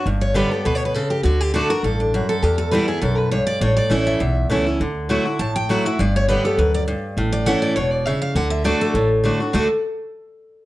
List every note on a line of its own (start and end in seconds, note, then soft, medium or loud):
0.06 0.42 G1 loud
0.06 0.63 G2 medium
0.21 0.35 C#5 medium
0.34 0.50 D3 medium
0.34 0.50 G3 medium
0.34 0.51 B3 medium
0.34 0.50 G4 medium
0.34 0.52 B4 medium
0.51 0.66 B3 soft
0.51 0.65 G4 medium
0.51 0.65 A4 medium
0.65 1.01 D2 medium
0.65 0.93 B2 medium
0.65 0.75 B4 medium
0.75 0.84 C#5 loud
0.85 0.94 B4 medium
0.94 1.23 C#3 medium
0.94 1.10 A4 medium
1.10 1.23 G4 medium
1.23 1.60 D2 medium
1.23 1.53 D3 medium
1.23 1.40 F#4 medium
1.40 1.53 G4 loud
1.54 1.69 D3 loud
1.54 1.70 A3 loud
1.54 1.70 D4 medium
1.54 1.68 F#4 loud
1.54 1.69 A4 medium
1.70 1.84 D4 medium
1.70 1.83 F#4 medium
1.70 1.83 A#4 loud
1.83 2.19 A1 medium
1.83 2.12 G2 medium
1.83 1.99 A4 medium
2.00 2.13 D4 medium
2.14 2.42 F#2 medium
2.14 2.29 F#4 medium
2.29 2.42 A4 loud
2.42 2.79 E2 loud
2.42 3.00 E2 medium
2.42 2.58 G4 medium
2.58 2.71 A4 medium
2.71 2.88 E3 medium
2.71 2.88 G3 loud
2.71 2.88 B3 medium
2.71 2.86 E4 loud
2.71 2.87 B4 medium
2.87 3.02 B3 soft
2.87 3.01 E4 medium
2.87 3.01 G#4 medium
3.02 3.38 B1 medium
3.02 3.30 F#2 medium
3.02 3.18 A4 medium
3.18 3.31 B4 medium
3.32 3.60 G2 medium
3.32 3.46 C#5 medium
3.47 3.61 D5 loud
3.61 3.79 A1 medium
3.61 4.18 A2 loud
3.61 3.76 C#5 medium
3.77 3.90 D5 loud
3.90 4.16 A1 medium
3.90 4.19 E3 medium
3.90 4.19 A3 medium
3.90 4.20 C#4 medium
3.90 4.20 E4 loud
3.90 4.05 E5 medium
4.07 4.47 E5 medium
4.20 4.46 B1 medium
4.20 4.77 E2 medium
4.50 4.75 C#2 medium
4.50 4.65 E3 medium
4.50 4.66 A3 medium
4.50 4.66 C#4 loud
4.50 4.65 E4 medium
4.66 4.80 C#4 medium
4.66 4.80 E4 medium
4.80 5.16 D2 medium
4.80 5.37 D3 medium
5.09 5.25 F#3 medium
5.09 5.25 A3 medium
5.09 5.25 E4 medium
5.09 5.24 F#4 loud
5.25 5.40 E4 soft
5.25 5.39 F#4 medium
5.39 5.75 A1 medium
5.39 5.96 A2 medium
5.39 5.55 A5 medium
5.56 5.70 G5 loud
5.69 5.84 F#3 medium
5.69 5.85 A3 medium
5.69 5.85 E4 loud
5.69 5.84 F#4 medium
5.69 5.85 F#5 medium
5.85 5.99 E4 soft
5.85 5.98 F#4 medium
5.85 5.99 E5 medium
5.99 6.35 G1 medium
5.99 6.55 G2 medium
5.99 6.15 D5 medium
6.16 6.28 C#5 medium
6.28 6.44 D3 medium
6.28 6.44 G3 medium
6.28 6.44 B3 loud
6.28 6.43 G4 medium
6.28 6.44 B4 medium
6.45 6.58 B3 medium
6.45 6.58 G4 medium
6.45 6.58 A4 medium
6.58 6.94 D2 medium
6.58 6.87 F#2 medium
6.58 6.74 B4 medium
6.74 6.82 D5 loud
6.88 7.16 G2 medium
7.17 7.53 A1 loud
7.17 7.74 A2 medium
7.33 7.46 D5 medium
7.46 7.75 E3 loud
7.46 7.75 A3 medium
7.46 7.75 C#4 medium
7.46 7.75 E4 loud
7.46 7.62 F#5 loud
7.62 7.75 D5 medium
7.76 8.12 E1 medium
7.76 8.05 B2 medium
7.76 7.92 C#5 medium
7.92 8.06 D5 medium
8.06 8.34 C#3 medium
8.06 8.21 E5 medium
8.22 8.35 F5 medium
8.35 8.71 D2 loud
8.35 8.63 D3 medium
8.35 8.50 F#5 loud
8.50 8.64 E5 loud
8.64 8.93 D3 medium
8.64 8.93 A3 medium
8.64 8.93 D4 loud
8.64 8.94 F#4 loud
8.64 8.80 D5 medium
8.81 9.09 A4 medium
8.94 9.30 A1 medium
8.94 9.51 A2 medium
9.24 9.39 D3 medium
9.24 9.39 A3 medium
9.24 9.40 D4 medium
9.24 9.39 F#4 medium
9.40 9.53 D4 medium
9.40 9.53 F#4 medium
9.53 9.68 D2 medium
9.53 9.66 D3 medium
9.53 9.67 A3 medium
9.53 9.67 D4 loud
9.53 9.67 F#4 loud
9.53 9.68 A4 medium